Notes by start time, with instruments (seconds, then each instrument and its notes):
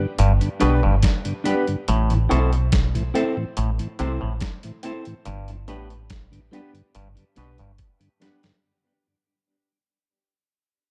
0.18 fingered electric bass G1, clav G2, closed hi-hat
0.41 tonewheel organ G2 D3, closed hi-hat
0.60 fingered electric bass B1, clav B2, tonewheel organ G3 B3 D4, grand piano B3 D4 G4 B4, clean electric guitar D4 G4 B4, closed hi-hat
0.83 fingered electric bass G1, clav G2, tonewheel organ G2 D3
1.03 kick, snare, closed hi-hat
1.25 tonewheel organ G2 D3, closed hi-hat
1.44 tonewheel organ G3 B3 D4, grand piano B3 D4 G4 B4, clean electric guitar D4 G4 B4, closed hi-hat
1.67 tonewheel organ G2 D3, closed hi-hat
1.88 fingered electric bass A1, clav A2, closed hi-hat
2.10 tonewheel organ A2 E3, closed hi-hat
2.29 fingered electric bass B1, clav B2, tonewheel organ A3 C4 E4, grand piano C4 E4 A4 C5, clean electric guitar E4 A4 C5, closed hi-hat
2.53 closed hi-hat
2.72 kick, snare, closed hi-hat
2.95 tonewheel organ A2 E3, closed hi-hat
3.14 tonewheel organ A3 C4 E4, grand piano C4 E4 A4 C5, clean electric guitar E4 A4 C5, closed hi-hat
3.37 tonewheel organ A2 E3
3.57 fingered electric bass A1, clav A2, closed hi-hat
3.79 tonewheel organ A2 E3, closed hi-hat
3.99 fingered electric bass C2, clav C3, tonewheel organ A3 C4 E4, grand piano C4 E4 A4 C5, clean electric guitar E4 A4 C5, closed hi-hat
4.21 fingered electric bass A1, clav A2, tonewheel organ A2 E3
4.40 kick, snare, closed hi-hat
4.63 tonewheel organ A2 E3, closed hi-hat
4.83 tonewheel organ A3 C4 E4, grand piano C4 E4 A4 C5, clean electric guitar E4 A4 C5, closed hi-hat
5.05 tonewheel organ A2 E3, closed hi-hat
5.25 fingered electric bass G1, clav G2, closed hi-hat
5.48 tonewheel organ G2 D3, closed hi-hat
5.68 fingered electric bass A1, clav A2, tonewheel organ G3 B3 D4, grand piano B3 D4 G4 B4, clean electric guitar D4 G4 B4, closed hi-hat
5.90 closed hi-hat
6.10 kick, snare, closed hi-hat
6.32 tonewheel organ G2 D3, closed hi-hat
6.51 tonewheel organ G3 B3 D4, grand piano B3 D4 G4 B4, clean electric guitar D4 G4 B4, closed hi-hat
6.73 tonewheel organ G2 D3, closed hi-hat
6.95 fingered electric bass G1, clav G2, closed hi-hat
7.16 tonewheel organ G2 D3, closed hi-hat
7.36 fingered electric bass B1, clav B2, tonewheel organ G3 B3 D4, grand piano B3 D4 G4 B4, clean electric guitar D4 G4 B4, closed hi-hat
7.58 fingered electric bass G1, tonewheel organ G2 D3, clav G2, closed hi-hat
7.78 kick, closed hi-hat
8.00 tonewheel organ G2 D3, closed hi-hat
8.20 tonewheel organ G3 B3 D4, grand piano B3 D4 G4 B4, clean electric guitar D4 G4 B4, snare, closed hi-hat
8.43 tonewheel organ G2 D3, snare, closed hi-hat